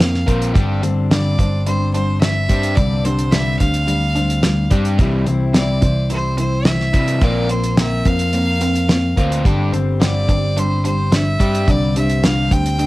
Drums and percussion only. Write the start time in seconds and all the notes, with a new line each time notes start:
0.00 snare, closed hi-hat
0.14 snare
0.28 kick, closed hi-hat
0.42 closed hi-hat
0.55 kick, closed hi-hat
0.83 closed hi-hat
1.11 snare, closed hi-hat
1.39 kick, closed hi-hat
1.66 closed hi-hat
1.94 closed hi-hat
2.22 snare, closed hi-hat
2.49 kick, closed hi-hat
2.63 closed hi-hat
2.77 kick, closed hi-hat
3.05 closed hi-hat
3.19 closed hi-hat
3.32 snare, closed hi-hat
3.60 kick, closed hi-hat
3.74 closed hi-hat
3.88 closed hi-hat
4.16 closed hi-hat
4.30 closed hi-hat
4.43 snare, closed hi-hat
4.71 kick, closed hi-hat
4.85 closed hi-hat
4.99 kick, closed hi-hat
5.27 closed hi-hat
5.54 snare, closed hi-hat
5.82 kick, closed hi-hat
6.10 closed hi-hat
6.38 closed hi-hat
6.65 snare, closed hi-hat
6.80 snare
6.94 kick, closed hi-hat
7.08 closed hi-hat
7.21 kick, closed hi-hat
7.49 closed hi-hat
7.64 closed hi-hat
7.77 snare, closed hi-hat
8.05 kick, closed hi-hat
8.19 closed hi-hat
8.33 closed hi-hat
8.61 closed hi-hat
8.75 closed hi-hat
8.89 snare, closed hi-hat
9.17 kick, closed hi-hat
9.32 closed hi-hat
9.45 kick, closed hi-hat
9.74 closed hi-hat
10.01 snare, closed hi-hat
10.29 kick, closed hi-hat
10.57 closed hi-hat
10.85 closed hi-hat
11.12 snare, closed hi-hat
11.40 kick, closed hi-hat
11.55 closed hi-hat
11.68 kick, closed hi-hat
11.96 closed hi-hat
12.10 closed hi-hat
12.24 snare, closed hi-hat
12.51 kick, closed hi-hat
12.66 closed hi-hat
12.79 closed hi-hat